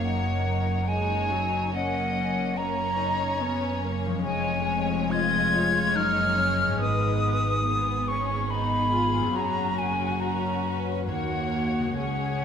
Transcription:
Already playing: F#1 F#2 A#3 C#4 C#5
0.05 D#4 F#5
0.88 G#3 C#5 G#5
1.32 F#3
1.74 A#3 C#4 D#5 F#5
2.15 C#4
2.56 A#3 C#4 C#5 A#5
2.98 D#4
3.39 B3 C#4
3.83 A#3
4.06 F3
4.10 G#3
4.14 C#4
4.19 C#5
4.23 F1 F2 G#3 C#4 C#5 G#5
4.68 G#3
5.11 F4 D#5 G#6
5.54 C#5
5.96 F#1 F#2 D#4 F6
6.38 C#4
6.63 G#2
6.67 G#3
6.72 D#4
6.76 B4
6.81 G#1 G#2 B3 B4 D#6
7.66 B3 G#4
8.08 C#4 C#6
8.50 B3 D#4 B5
8.92 F4
9.18 F#2
9.22 C#4
9.27 F#4
9.31 F#4 C#5
9.36 F#1 F#2 C#4 A#5
9.78 G#5
10.21 C#4 A#4 A#5
10.66 B4
11.08 D#2 A#3 F#4 C#5 F#5
11.79 C#3
11.83 C#4
11.88 G#4
11.92 G#4 C#5
11.97 C#2 C#4 C#5 F#5

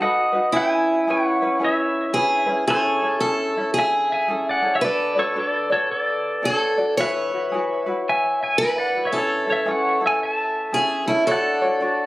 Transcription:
Already playing: F#4
0.00 D#4 F#4 A4 B4 D#5 F#5
0.33 D#4 F#4 B4
0.52 C#4 E4 G#4 B4
0.57 E5 G#5
1.07 C#4 E4 G#4 B4 C#5 F#5
1.42 C#4 E4 B4
1.59 C#4 E4 G#4 B4
1.64 C#5 E5
2.13 C#4 E4 G#4 B4
2.46 C#4 E4 B4
2.67 C#4 E4 G#4 A4 C#5
3.02 C#4 E4 A4
3.20 C#4 E4 G#4 A4
3.57 C#4 E4
3.74 G#4
3.79 E5 G#5
4.12 E5 G#5
4.28 C#4 E4 G#4 A4
4.49 D5 F#5
4.62 C#4 E4 A4
4.75 C#5 E5
4.81 D4 F#4 A4 B4 D5
5.15 D4 F#4 A4 D5
5.19 C#5
5.34 D4 F#4 A4 D5
5.38 A4 D5
5.70 D4 F#4 A4 C#5 D5
5.92 A4 D5
6.42 D4 F#4 A4 D5
6.49 C#5
6.78 D4 F#4 D5
6.97 E4 F#4 G#4 B4 C#5 E5
7.32 E4 F#4 B4
7.52 E4 F#4 G#4 B4
7.86 E4 F#4 B4
8.09 E5 G#5
8.43 E5 G#5
8.58 E4 F#4 G#4 B4
8.78 D5 F#5
8.95 E4 F#4 B4
9.05 C#5 E5
9.12 C#4 E4 G#4 A4
9.16 A4 C#5
9.46 C#4 E4 A4
9.50 C#5 E5
9.66 C#4 E4 G#4 A4 C#5
9.71 F#5
10.01 C#4 E4 A4
10.06 E5 G#5
10.23 E5 A5
10.72 C#4 E4 G#4 A4
11.07 C#4 E4 A4
11.26 D4 F#4 A4 C#5
11.31 D5 F#5
11.62 D4 F#4 C#5
11.80 D4 F#4 A4 C#5

